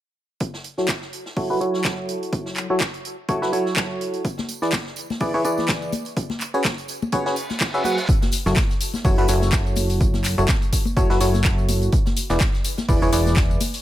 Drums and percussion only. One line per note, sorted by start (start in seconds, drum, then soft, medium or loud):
0.40 kick loud
0.40 closed hi-hat medium
0.54 snare soft
0.64 closed hi-hat medium
0.77 snare soft
0.88 kick loud
0.88 snare loud
0.88 clap loud
0.88 closed hi-hat medium
1.02 snare soft
1.13 closed hi-hat medium
1.26 snare soft
1.37 kick loud
1.37 open hi-hat medium
1.61 closed hi-hat medium
1.74 snare soft
1.84 kick loud
1.84 snare loud
1.84 clap loud
1.84 closed hi-hat medium
2.09 closed hi-hat medium
2.23 closed hi-hat soft
2.33 kick loud
2.33 closed hi-hat medium
2.46 snare soft
2.56 clap medium
2.56 closed hi-hat medium
2.80 kick loud
2.80 snare loud
2.80 clap loud
2.80 closed hi-hat medium
2.94 closed hi-hat soft
3.05 closed hi-hat medium
3.28 kick loud
3.28 closed hi-hat medium
3.42 snare medium
3.53 closed hi-hat medium
3.66 snare soft
3.76 kick loud
3.76 snare loud
3.76 clap loud
3.76 closed hi-hat medium
4.01 closed hi-hat medium
4.13 closed hi-hat soft
4.25 kick loud
4.25 closed hi-hat medium
4.25 tambourine soft
4.38 snare soft
4.38 high conga medium
4.48 closed hi-hat medium
4.48 tambourine loud
4.62 snare soft
4.62 tambourine soft
4.72 kick loud
4.72 snare loud
4.72 clap loud
4.72 closed hi-hat medium
4.72 tambourine medium
4.72 high conga medium
4.86 snare soft
4.96 closed hi-hat medium
4.96 tambourine medium
5.10 snare soft
5.10 tambourine soft
5.10 high conga medium
5.20 kick loud
5.20 open hi-hat medium
5.20 tambourine medium
5.44 closed hi-hat medium
5.44 tambourine loud
5.58 snare soft
5.58 tambourine soft
5.58 high conga medium
5.68 kick loud
5.68 snare loud
5.68 clap loud
5.68 closed hi-hat medium
5.68 tambourine medium
5.82 tambourine soft
5.92 closed hi-hat medium
5.92 tambourine medium
5.92 high conga medium
6.05 closed hi-hat soft
6.05 tambourine soft
6.17 kick loud
6.17 closed hi-hat medium
6.17 tambourine medium
6.30 snare soft
6.30 high conga medium
6.41 clap medium
6.41 closed hi-hat medium
6.41 tambourine loud
6.54 tambourine soft
6.64 kick loud
6.64 snare loud
6.64 clap loud
6.64 closed hi-hat medium
6.64 tambourine medium
6.64 high conga medium
6.78 closed hi-hat soft
6.78 tambourine soft
6.88 closed hi-hat medium
6.88 tambourine medium
7.02 tambourine soft
7.02 high conga medium
7.12 kick loud
7.12 closed hi-hat medium
7.12 tambourine medium
7.26 snare medium
7.36 closed hi-hat medium
7.36 tambourine medium
7.50 snare soft
7.50 tambourine soft
7.50 high conga medium
7.60 kick loud
7.60 snare loud
7.60 clap loud
7.60 closed hi-hat medium
7.60 tambourine soft
7.74 tambourine soft
7.84 closed hi-hat medium
7.84 tambourine medium
7.84 high conga medium
7.98 closed hi-hat soft
7.98 tambourine soft
8.09 kick loud
8.09 closed hi-hat medium
8.09 tambourine medium
8.09 tambourine soft
8.22 snare soft
8.22 tambourine soft
8.22 high conga loud
8.32 closed hi-hat medium
8.32 open hi-hat loud
8.32 tambourine medium
8.33 tambourine medium
8.46 snare soft
8.46 tambourine soft
8.56 kick loud
8.56 snare loud
8.56 clap loud
8.56 closed hi-hat medium
8.56 tambourine medium
8.56 tambourine soft
8.56 high conga medium
8.69 snare soft
8.69 tambourine soft
8.80 closed hi-hat medium
8.80 open hi-hat loud
8.80 tambourine medium
8.94 snare soft
8.94 tambourine soft
8.94 high conga loud
9.04 kick loud
9.04 open hi-hat medium
9.04 tambourine soft
9.18 tambourine soft
9.28 closed hi-hat medium
9.28 open hi-hat loud
9.28 tambourine loud
9.29 tambourine medium
9.41 snare soft
9.41 tambourine soft
9.41 high conga medium
9.52 kick loud
9.52 snare loud
9.52 clap loud
9.52 closed hi-hat medium
9.52 tambourine soft
9.66 tambourine soft
9.76 closed hi-hat medium
9.76 open hi-hat loud
9.76 tambourine medium
9.76 high conga loud
9.77 tambourine medium
9.89 closed hi-hat soft
9.89 open hi-hat medium
9.89 tambourine soft
10.00 kick loud
10.00 closed hi-hat medium
10.00 tambourine medium
10.00 tambourine soft
10.14 snare soft
10.14 tambourine soft
10.14 high conga medium
10.24 clap medium
10.24 closed hi-hat medium
10.24 open hi-hat loud
10.24 tambourine loud
10.25 tambourine medium
10.38 tambourine soft
10.48 kick loud
10.48 snare loud
10.48 clap loud
10.48 closed hi-hat medium
10.48 tambourine medium
10.48 tambourine soft
10.48 high conga medium
10.62 closed hi-hat soft
10.62 tambourine soft
10.73 kick medium
10.73 closed hi-hat medium
10.73 open hi-hat loud
10.73 tambourine medium
10.85 tambourine soft
10.85 high conga medium
10.97 kick loud
10.97 closed hi-hat medium
10.97 tambourine medium
10.97 tambourine soft
11.10 snare medium
11.10 tambourine soft
11.21 closed hi-hat medium
11.21 open hi-hat loud
11.21 tambourine loud
11.21 tambourine medium
11.34 snare soft
11.34 tambourine soft
11.34 high conga medium
11.44 kick loud
11.44 snare loud
11.44 clap loud
11.44 closed hi-hat medium
11.44 tambourine medium
11.44 tambourine soft
11.58 tambourine soft
11.69 closed hi-hat medium
11.69 open hi-hat loud
11.69 tambourine medium
11.69 high conga loud
11.82 closed hi-hat soft
11.82 tambourine soft
11.92 kick loud
11.92 closed hi-hat medium
11.92 tambourine medium
11.92 tambourine soft
12.06 snare soft
12.06 tambourine soft
12.06 high conga medium
12.17 closed hi-hat medium
12.17 open hi-hat loud
12.17 tambourine medium
12.29 snare soft
12.29 tambourine soft
12.40 kick loud
12.40 snare loud
12.40 clap loud
12.40 closed hi-hat medium
12.40 tambourine medium
12.40 tambourine soft
12.40 high conga medium
12.54 snare soft
12.54 tambourine soft
12.64 closed hi-hat medium
12.64 open hi-hat loud
12.64 tambourine loud
12.64 tambourine medium
12.77 snare soft
12.77 tambourine soft
12.77 high conga loud
12.88 kick loud
12.88 open hi-hat medium
12.88 tambourine medium
12.88 tambourine soft
13.02 tambourine soft
13.12 closed hi-hat medium
13.12 open hi-hat loud
13.12 tambourine loud
13.12 tambourine medium
13.26 snare soft
13.26 tambourine soft
13.26 high conga medium
13.36 kick loud
13.36 snare loud
13.36 clap loud
13.36 closed hi-hat medium
13.36 tambourine medium
13.36 tambourine soft
13.51 tambourine soft
13.60 closed hi-hat medium
13.60 open hi-hat loud
13.60 tambourine loud
13.60 tambourine medium
13.60 high conga medium
13.74 closed hi-hat soft
13.74 open hi-hat medium
13.74 tambourine soft